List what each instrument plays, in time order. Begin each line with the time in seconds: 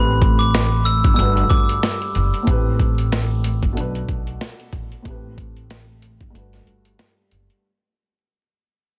Already playing: upright bass A1, upright piano A2 A3 C4 G4 B4, glockenspiel B5
0.22 kick, closed hi-hat
0.39 glockenspiel D6, closed hi-hat
0.54 cross-stick, snare, closed hi-hat
0.85 glockenspiel E6, closed hi-hat
1.04 upright bass G1, kick, closed hi-hat
1.14 upright piano G2 G3 A3, glockenspiel E6
1.18 upright bass G1, upright piano F#4 B4, closed hi-hat
1.37 closed hi-hat
1.50 upright bass G1, glockenspiel D6, kick, closed hi-hat
1.69 closed hi-hat
1.83 cross-stick, snare, closed hi-hat
2.02 closed hi-hat
2.15 upright bass F#1, closed hi-hat
2.34 closed hi-hat
2.43 upright piano A2 A3 C4
2.47 upright bass A1, upright piano G4 B4, kick, closed hi-hat
2.80 kick, closed hi-hat
2.98 closed hi-hat
3.12 cross-stick, snare, closed hi-hat
3.44 closed hi-hat
3.62 upright bass G1, kick, closed hi-hat
3.72 upright piano B2 A3 D4
3.77 upright bass B1, upright piano F#4 B4, closed hi-hat
3.95 closed hi-hat
4.08 upright bass B1, kick, closed hi-hat
4.27 closed hi-hat
4.41 cross-stick, snare, closed hi-hat
4.60 closed hi-hat
4.73 upright bass A1, kick, closed hi-hat
4.92 closed hi-hat
5.02 upright bass A1, upright piano A2 A3 C4, kick, closed hi-hat
5.08 upright piano G4 B4
5.38 kick, closed hi-hat
5.56 closed hi-hat
5.70 cross-stick, snare, closed hi-hat
6.02 closed hi-hat
6.21 upright bass G1, kick, closed hi-hat
6.30 upright piano G2 G3 A3
6.35 upright bass G1, upright piano F#4 B4, closed hi-hat
6.53 snare, closed hi-hat
6.67 upright bass G1, closed hi-hat
6.85 closed hi-hat
6.99 cross-stick, snare, closed hi-hat
7.31 upright bass F#1, closed hi-hat
7.50 closed hi-hat